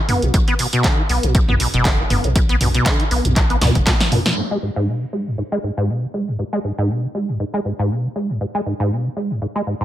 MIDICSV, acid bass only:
0, 0, Header, 1, 2, 480
1, 0, Start_track
1, 0, Key_signature, 5, "minor"
1, 0, Tempo, 504202
1, 323, Time_signature, 4, 2, 24, 8
1, 9374, End_track
2, 0, Start_track
2, 0, Title_t, "Acid bass"
2, 0, Program_c, 0, 38
2, 84, Note_on_c, 0, 59, 81
2, 215, Note_on_c, 0, 47, 75
2, 230, Note_off_c, 0, 59, 0
2, 304, Note_off_c, 0, 47, 0
2, 324, Note_on_c, 0, 47, 84
2, 367, Note_off_c, 0, 47, 0
2, 456, Note_on_c, 0, 59, 104
2, 515, Note_off_c, 0, 59, 0
2, 564, Note_on_c, 0, 47, 73
2, 636, Note_off_c, 0, 47, 0
2, 696, Note_on_c, 0, 47, 105
2, 804, Note_on_c, 0, 50, 101
2, 818, Note_off_c, 0, 47, 0
2, 935, Note_on_c, 0, 52, 103
2, 949, Note_off_c, 0, 50, 0
2, 970, Note_off_c, 0, 52, 0
2, 1043, Note_on_c, 0, 59, 77
2, 1175, Note_on_c, 0, 47, 76
2, 1190, Note_off_c, 0, 59, 0
2, 1264, Note_off_c, 0, 47, 0
2, 1283, Note_on_c, 0, 47, 81
2, 1327, Note_off_c, 0, 47, 0
2, 1415, Note_on_c, 0, 59, 102
2, 1474, Note_off_c, 0, 59, 0
2, 1522, Note_on_c, 0, 47, 78
2, 1595, Note_off_c, 0, 47, 0
2, 1654, Note_on_c, 0, 47, 101
2, 1763, Note_on_c, 0, 50, 104
2, 1777, Note_off_c, 0, 47, 0
2, 1894, Note_on_c, 0, 52, 100
2, 1909, Note_off_c, 0, 50, 0
2, 1930, Note_off_c, 0, 52, 0
2, 2003, Note_on_c, 0, 59, 78
2, 2135, Note_on_c, 0, 47, 76
2, 2149, Note_off_c, 0, 59, 0
2, 2224, Note_off_c, 0, 47, 0
2, 2242, Note_on_c, 0, 47, 79
2, 2286, Note_off_c, 0, 47, 0
2, 2374, Note_on_c, 0, 59, 103
2, 2434, Note_off_c, 0, 59, 0
2, 2483, Note_on_c, 0, 47, 76
2, 2555, Note_off_c, 0, 47, 0
2, 2614, Note_on_c, 0, 47, 104
2, 2722, Note_on_c, 0, 50, 101
2, 2737, Note_off_c, 0, 47, 0
2, 2854, Note_on_c, 0, 52, 102
2, 2868, Note_off_c, 0, 50, 0
2, 2890, Note_off_c, 0, 52, 0
2, 2961, Note_on_c, 0, 59, 78
2, 3094, Note_on_c, 0, 47, 76
2, 3108, Note_off_c, 0, 59, 0
2, 3183, Note_off_c, 0, 47, 0
2, 3202, Note_on_c, 0, 47, 82
2, 3246, Note_off_c, 0, 47, 0
2, 3334, Note_on_c, 0, 59, 104
2, 3394, Note_off_c, 0, 59, 0
2, 3442, Note_on_c, 0, 47, 101
2, 3575, Note_on_c, 0, 50, 76
2, 3589, Note_off_c, 0, 47, 0
2, 3634, Note_off_c, 0, 50, 0
2, 3682, Note_on_c, 0, 47, 85
2, 3755, Note_off_c, 0, 47, 0
2, 3923, Note_on_c, 0, 47, 103
2, 3995, Note_off_c, 0, 47, 0
2, 4054, Note_on_c, 0, 47, 75
2, 4114, Note_off_c, 0, 47, 0
2, 4162, Note_on_c, 0, 44, 78
2, 4206, Note_off_c, 0, 44, 0
2, 4293, Note_on_c, 0, 56, 98
2, 4353, Note_off_c, 0, 56, 0
2, 4402, Note_on_c, 0, 44, 73
2, 4475, Note_off_c, 0, 44, 0
2, 4533, Note_on_c, 0, 44, 101
2, 4642, Note_on_c, 0, 47, 98
2, 4656, Note_off_c, 0, 44, 0
2, 4774, Note_on_c, 0, 49, 101
2, 4788, Note_off_c, 0, 47, 0
2, 4810, Note_off_c, 0, 49, 0
2, 4882, Note_on_c, 0, 56, 74
2, 5014, Note_on_c, 0, 44, 74
2, 5028, Note_off_c, 0, 56, 0
2, 5103, Note_off_c, 0, 44, 0
2, 5122, Note_on_c, 0, 44, 80
2, 5166, Note_off_c, 0, 44, 0
2, 5254, Note_on_c, 0, 56, 101
2, 5314, Note_off_c, 0, 56, 0
2, 5363, Note_on_c, 0, 44, 73
2, 5435, Note_off_c, 0, 44, 0
2, 5494, Note_on_c, 0, 44, 98
2, 5603, Note_on_c, 0, 47, 99
2, 5618, Note_off_c, 0, 44, 0
2, 5735, Note_on_c, 0, 49, 95
2, 5749, Note_off_c, 0, 47, 0
2, 5770, Note_off_c, 0, 49, 0
2, 5843, Note_on_c, 0, 56, 74
2, 5974, Note_on_c, 0, 44, 71
2, 5988, Note_off_c, 0, 56, 0
2, 6064, Note_off_c, 0, 44, 0
2, 6082, Note_on_c, 0, 44, 79
2, 6126, Note_off_c, 0, 44, 0
2, 6214, Note_on_c, 0, 56, 99
2, 6274, Note_off_c, 0, 56, 0
2, 6322, Note_on_c, 0, 44, 72
2, 6395, Note_off_c, 0, 44, 0
2, 6454, Note_on_c, 0, 44, 100
2, 6563, Note_on_c, 0, 47, 98
2, 6577, Note_off_c, 0, 44, 0
2, 6694, Note_on_c, 0, 49, 101
2, 6708, Note_off_c, 0, 47, 0
2, 6730, Note_off_c, 0, 49, 0
2, 6803, Note_on_c, 0, 56, 74
2, 6934, Note_on_c, 0, 44, 76
2, 6948, Note_off_c, 0, 56, 0
2, 7023, Note_off_c, 0, 44, 0
2, 7043, Note_on_c, 0, 44, 80
2, 7086, Note_off_c, 0, 44, 0
2, 7174, Note_on_c, 0, 56, 102
2, 7234, Note_off_c, 0, 56, 0
2, 7283, Note_on_c, 0, 44, 75
2, 7355, Note_off_c, 0, 44, 0
2, 7415, Note_on_c, 0, 44, 96
2, 7523, Note_on_c, 0, 47, 99
2, 7537, Note_off_c, 0, 44, 0
2, 7654, Note_on_c, 0, 49, 100
2, 7669, Note_off_c, 0, 47, 0
2, 7690, Note_off_c, 0, 49, 0
2, 7764, Note_on_c, 0, 56, 77
2, 7895, Note_on_c, 0, 44, 72
2, 7910, Note_off_c, 0, 56, 0
2, 7984, Note_off_c, 0, 44, 0
2, 8004, Note_on_c, 0, 44, 77
2, 8047, Note_off_c, 0, 44, 0
2, 8135, Note_on_c, 0, 56, 101
2, 8194, Note_off_c, 0, 56, 0
2, 8244, Note_on_c, 0, 44, 71
2, 8316, Note_off_c, 0, 44, 0
2, 8375, Note_on_c, 0, 44, 99
2, 8484, Note_on_c, 0, 47, 100
2, 8498, Note_off_c, 0, 44, 0
2, 8615, Note_on_c, 0, 49, 103
2, 8629, Note_off_c, 0, 47, 0
2, 8650, Note_off_c, 0, 49, 0
2, 8724, Note_on_c, 0, 56, 72
2, 8855, Note_on_c, 0, 44, 72
2, 8870, Note_off_c, 0, 56, 0
2, 8944, Note_off_c, 0, 44, 0
2, 8964, Note_on_c, 0, 44, 80
2, 9007, Note_off_c, 0, 44, 0
2, 9095, Note_on_c, 0, 56, 100
2, 9154, Note_off_c, 0, 56, 0
2, 9203, Note_on_c, 0, 44, 72
2, 9275, Note_off_c, 0, 44, 0
2, 9335, Note_on_c, 0, 44, 97
2, 9374, Note_off_c, 0, 44, 0
2, 9374, End_track
0, 0, End_of_file